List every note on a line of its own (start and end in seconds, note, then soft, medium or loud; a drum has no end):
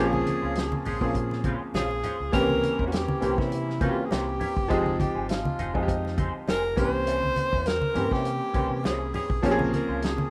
0.00 0.23 A#1 loud
0.00 0.76 F3 loud
0.00 0.17 G#3 medium
0.00 0.77 A#3 loud
0.00 0.77 C4 loud
0.00 0.18 C#4 medium
0.00 0.77 C#4 loud
0.00 0.18 F4 medium
0.00 0.78 G#4 loud
0.00 0.82 G#4 loud
0.00 0.18 C#5 medium
0.13 high conga medium
0.27 muted clean electric guitar stroke soft
0.27 closed hi-hat medium
0.27 high conga medium
0.42 0.69 C#2 medium
0.42 0.53 G#3 soft
0.42 0.52 C#4 medium
0.42 0.52 F4 medium
0.42 0.52 C5 medium
0.55 muted clean electric guitar stroke soft
0.55 snare loud
0.55 closed hi-hat medium
0.72 muted clean electric guitar stroke soft
0.72 muted conga soft
0.72 high conga medium
0.85 1.00 A#1 medium
0.85 0.97 G#3 medium
0.85 0.97 C#4 medium
0.85 0.97 F4 medium
0.85 1.44 G#4 medium
0.85 0.97 C5 medium
0.85 open hi-hat medium
0.85 low conga medium
1.01 1.54 A#2 loud
1.01 1.92 F3 medium
1.01 1.12 G#3 medium
1.01 1.92 A#3 medium
1.01 1.92 C4 medium
1.01 1.93 C#4 medium
1.01 1.12 C#4 medium
1.01 1.11 F4 medium
1.01 1.93 G#4 medium
1.01 1.11 C5 medium
1.01 kick medium
1.14 muted clean electric guitar stroke soft
1.14 kick medium
1.14 closed hi-hat medium
1.31 muted clean electric guitar stroke medium
1.31 snare soft
1.31 muted conga soft
1.44 1.55 C#3 medium
1.44 1.55 F3 medium
1.44 1.66 G#3 medium
1.44 1.55 C4 medium
1.44 1.61 C#4 medium
1.44 1.55 F4 medium
1.44 1.61 F4 medium
1.44 1.60 C5 medium
1.44 kick medium
1.44 closed hi-hat medium
1.44 high conga medium
1.61 muted clean electric guitar stroke soft
1.74 2.00 A#1 medium
1.74 2.30 C#3 medium
1.74 2.30 F3 medium
1.74 1.89 G#3 medium
1.74 2.30 C4 medium
1.74 1.89 C#4 medium
1.74 2.30 F4 medium
1.74 1.89 F4 medium
1.74 2.30 G#4 loud
1.74 1.89 C5 medium
1.74 snare loud
1.74 closed hi-hat medium
1.74 muted conga soft
1.74 high conga medium
1.90 muted clean electric guitar stroke soft
1.90 muted conga soft
2.03 2.15 G#3 medium
2.03 2.15 C#4 medium
2.03 2.15 F4 medium
2.03 2.16 C5 medium
2.03 closed hi-hat medium
2.03 low conga medium
2.19 2.32 C#2 medium
2.19 muted clean electric guitar stroke soft
2.32 2.60 C2 loud
2.32 3.02 E3 loud
2.32 3.02 A#3 loud
2.32 3.02 C4 medium
2.32 2.47 C#4 medium
2.32 3.03 C#4 loud
2.32 2.48 E4 medium
2.32 3.03 G4 loud
2.32 2.83 A#4 loud
2.32 2.48 A#4 medium
2.32 2.48 C5 medium
2.32 kick loud
2.32 closed hi-hat loud
2.32 muted conga soft
2.50 muted conga soft
2.50 high conga medium
2.63 muted clean electric guitar stroke soft
2.63 closed hi-hat medium
2.63 high conga medium
2.78 3.06 E2 medium
2.78 2.89 C#4 medium
2.78 2.89 E4 medium
2.78 2.89 A#4 medium
2.78 2.88 C5 medium
2.78 kick medium
2.87 2.94 F#4 medium
2.92 3.40 G4 loud
2.92 muted clean electric guitar stroke soft
2.92 snare loud
2.92 closed hi-hat medium
2.92 muted conga soft
3.08 muted clean electric guitar stroke soft
3.08 muted conga soft
3.08 high conga medium
3.21 3.37 C2 loud
3.21 3.68 E3 medium
3.21 3.68 A#3 medium
3.21 3.69 C4 medium
3.21 3.33 C#4 medium
3.21 3.69 C#4 medium
3.21 3.34 E4 medium
3.21 3.69 G4 medium
3.21 3.34 A#4 medium
3.21 3.34 C5 medium
3.21 closed hi-hat medium
3.21 low conga medium
3.38 3.91 C3 loud
3.38 3.49 C#4 medium
3.38 3.83 E4 loud
3.38 3.49 E4 medium
3.38 3.48 A#4 medium
3.38 3.48 C5 medium
3.38 kick medium
3.38 snare soft
3.52 muted clean electric guitar stroke soft
3.52 closed hi-hat medium
3.52 muted conga soft
3.68 muted clean electric guitar stroke medium
3.68 snare soft
3.80 4.50 E3 medium
3.80 4.50 A#3 medium
3.80 4.50 C4 medium
3.80 4.02 C#4 medium
3.80 4.51 C#4 medium
3.80 3.97 E4 medium
3.80 4.07 F4 medium
3.80 3.89 F#4 medium
3.80 3.97 A#4 medium
3.80 3.96 C5 medium
3.80 kick loud
3.80 closed hi-hat medium
3.80 high conga medium
3.89 4.54 G4 medium
3.97 muted clean electric guitar stroke soft
4.06 4.12 G#4 medium
4.10 4.38 C2 medium
4.10 4.25 C#4 medium
4.10 4.25 E4 medium
4.10 4.71 G4 loud
4.10 4.26 A#4 medium
4.10 4.26 C5 medium
4.10 snare loud
4.10 closed hi-hat medium
4.10 muted conga soft
4.27 muted clean electric guitar stroke soft
4.40 4.51 C#4 medium
4.40 4.52 E4 medium
4.40 4.52 A#4 medium
4.40 4.52 C#5 medium
4.40 open hi-hat medium
4.40 low conga medium
4.56 4.69 F#1 loud
4.56 muted clean electric guitar stroke soft
4.56 kick loud
4.68 4.97 F1 medium
4.68 5.50 F3 loud
4.68 5.50 G#3 loud
4.68 5.50 C4 medium
4.68 4.84 C4 medium
4.68 4.85 D#4 medium
4.68 5.51 D#4 loud
4.68 5.51 G4 loud
4.68 4.99 G#4 loud
4.68 4.85 G#4 medium
4.68 4.85 D#5 medium
4.68 kick loud
4.68 closed hi-hat loud
4.86 muted conga soft
4.86 high conga medium
4.99 5.27 G4 medium
4.99 muted clean electric guitar stroke soft
4.99 kick medium
4.99 closed hi-hat medium
4.99 high conga medium
5.15 5.42 G#1 medium
5.15 5.26 C4 soft
5.15 5.26 D#4 medium
5.15 5.25 G#4 medium
5.15 5.25 C5 medium
5.29 5.77 F4 medium
5.29 muted clean electric guitar stroke soft
5.29 snare loud
5.29 closed hi-hat loud
5.44 muted clean electric guitar stroke soft
5.44 muted conga soft
5.44 high conga medium
5.59 5.73 F1 medium
5.59 5.70 C4 medium
5.59 5.70 D#4 medium
5.59 5.71 G#4 medium
5.59 5.71 C5 medium
5.59 closed hi-hat medium
5.59 low conga medium
5.74 6.27 F2 loud
5.74 6.65 F3 medium
5.74 6.66 G#3 medium
5.74 6.66 C4 medium
5.74 5.85 C4 soft
5.74 6.66 D#4 medium
5.74 5.85 D#4 medium
5.74 6.21 D#4 medium
5.74 5.81 F4 medium
5.74 5.85 G#4 medium
5.74 5.84 C5 medium
5.74 kick medium
5.83 6.70 G4 medium
5.88 muted clean electric guitar stroke soft
5.88 kick medium
5.88 closed hi-hat medium
6.04 muted clean electric guitar stroke soft
6.04 snare soft
6.04 muted conga soft
6.18 6.32 C4 medium
6.18 6.33 D#4 medium
6.18 6.33 G#4 medium
6.18 6.33 C5 medium
6.18 kick loud
6.18 closed hi-hat medium
6.18 high conga medium
6.34 muted clean electric guitar stroke soft
6.47 6.74 F1 medium
6.47 6.62 C4 medium
6.47 6.62 D#4 medium
6.47 6.62 G#4 medium
6.47 6.80 A#4 loud
6.47 6.62 C5 loud
6.47 snare loud
6.47 closed hi-hat medium
6.47 muted conga soft
6.64 muted clean electric guitar stroke soft
6.76 7.30 C2 loud
6.76 7.72 E3 medium
6.76 7.72 A#3 medium
6.76 6.88 A#3 medium
6.76 7.72 C4 medium
6.76 7.73 C#4 medium
6.76 6.89 C#4 medium
6.76 6.89 E4 medium
6.76 7.73 G4 medium
6.76 7.69 C5 loud
6.76 6.89 C5 medium
6.76 kick loud
6.76 closed hi-hat medium
6.76 low conga medium
6.93 muted clean electric guitar stroke soft
7.06 7.21 A#3 medium
7.06 7.21 C#4 medium
7.06 7.22 E4 medium
7.06 7.22 C5 medium
7.06 closed hi-hat loud
7.23 high conga medium
7.36 muted clean electric guitar stroke soft
7.36 closed hi-hat medium
7.36 high conga medium
7.52 7.79 E2 medium
7.52 7.63 A#3 medium
7.52 7.62 C#4 medium
7.52 7.62 E4 medium
7.52 7.62 C5 medium
7.52 kick medium
7.66 8.14 A#4 loud
7.66 muted clean electric guitar stroke soft
7.66 snare loud
7.66 closed hi-hat medium
7.81 muted clean electric guitar stroke soft
7.81 muted conga soft
7.81 high conga medium
7.94 8.10 G2 medium
7.94 8.41 E3 medium
7.94 8.42 A#3 medium
7.94 8.07 A#3 medium
7.94 8.42 C4 medium
7.94 8.42 C#4 medium
7.94 8.07 C#4 medium
7.94 8.07 E4 medium
7.94 8.43 G4 medium
7.94 8.08 C5 medium
7.94 closed hi-hat medium
7.94 low conga medium
8.11 8.38 C3 loud
8.11 8.22 A#3 medium
8.11 8.21 C#4 medium
8.11 8.21 E4 medium
8.11 8.85 G4 loud
8.11 8.21 C5 medium
8.11 kick medium
8.11 snare soft
8.24 muted clean electric guitar stroke soft
8.24 closed hi-hat medium
8.40 muted clean electric guitar stroke medium
8.54 8.69 C2 medium
8.54 9.23 E3 medium
8.54 8.69 A#3 medium
8.54 9.24 A#3 medium
8.54 9.24 C4 medium
8.54 8.69 C#4 medium
8.54 9.24 C#4 medium
8.54 8.69 E4 medium
8.54 9.25 G4 medium
8.54 8.69 C5 medium
8.54 kick loud
8.54 closed hi-hat medium
8.54 high conga medium
8.70 8.83 C3 medium
8.70 muted clean electric guitar stroke medium
8.83 9.11 C2 medium
8.83 8.98 A#3 medium
8.83 8.99 C#4 medium
8.83 8.99 E4 loud
8.83 9.13 G#4 loud
8.83 8.99 C5 medium
8.83 snare loud
8.83 closed hi-hat medium
8.83 muted conga soft
9.00 muted clean electric guitar stroke soft
9.13 9.25 A#3 medium
9.13 9.25 C#4 medium
9.13 9.26 E4 medium
9.13 9.47 G#4 loud
9.13 9.26 C#5 medium
9.13 open hi-hat medium
9.13 low conga medium
9.29 9.42 B1 medium
9.29 muted clean electric guitar stroke soft
9.29 kick loud
9.42 9.70 A#1 loud
9.42 10.23 F3 loud
9.42 9.58 G#3 medium
9.42 10.24 A#3 medium
9.42 10.24 C4 loud
9.42 9.58 C#4 medium
9.42 10.24 C#4 loud
9.42 9.58 F4 medium
9.42 9.51 G4 medium
9.42 9.74 A#4 loud
9.42 9.59 C#5 medium
9.42 kick loud
9.42 closed hi-hat loud
9.51 10.28 G#4 loud
9.59 muted conga soft
9.59 high conga medium
9.73 10.06 A#4 medium
9.73 muted clean electric guitar stroke soft
9.73 closed hi-hat medium
9.73 high conga medium
9.89 10.15 C#2 medium
9.89 9.99 G#3 soft
9.89 9.99 C#4 medium
9.89 9.99 F4 medium
9.89 9.99 C5 medium
10.02 10.30 G#4 loud
10.02 muted clean electric guitar stroke soft
10.02 snare loud
10.02 closed hi-hat loud
10.18 muted clean electric guitar stroke soft
10.18 muted conga soft
10.18 high conga medium